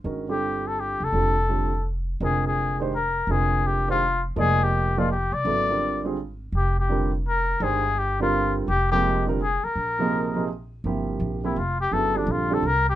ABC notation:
X:1
M:3/4
L:1/8
Q:"Swing" 1/4=167
K:F
V:1 name="Muted trumpet"
z G2 A G A- | A4 z2 | [K:Fdor] A A2 z B2 | A2 G F2 z |
A G2 F G d- | d3 z3 | G G2 z B2 | A2 G F2 z |
G G2 z A B- | B4 z2 | [K:Gdor] z3 E F G | A D F A B G |]
V:2 name="Grand piano"
[_E,_A,^C^FB] [D,G,=C=F=A]4 z | [D,G,CFA] z [D,G,CFA] z3 | [K:Fdor] [D,A,CFB]3 [E,A,DGc] z2 | [D,A,CFB]3 [E,A,DGc] z2 |
[F,A,B,Ed]3 [F,B,EAd] z2 | [_D,_G,=B,=E=A] [=D,=G,CF_B]2 [D,G,CF_A] z2 | z2 [D,G,CFB] z3 | [E,A,DGc] z2 [D,G,CFB]3 |
z [C,F,A,B,E]2 [D,G,CFB] z2 | z [C,F,B,EA]2 [C,F,B,EA] z2 | [K:Gdor] [C,F,B,EG]3 [C,F,B,EG] z2 | [^C,^F,=B,E_A] [D,G,=C=F=A]2 [D,G,CFA] z2 |]
V:3 name="Upright bass" clef=bass
G,,,4- G,,, F,,, | F,,,6 | [K:Fdor] F,,,6 | F,,,6 |
F,,,4- F,,, C,, | A,,,6 | F,,,6 | G,,,6 |
F,,,4- F,,, z | B,,,6 | [K:Gdor] G,,,2 B,,,2 F,,,2 | G,,,2 B,,,2 C,,2 |]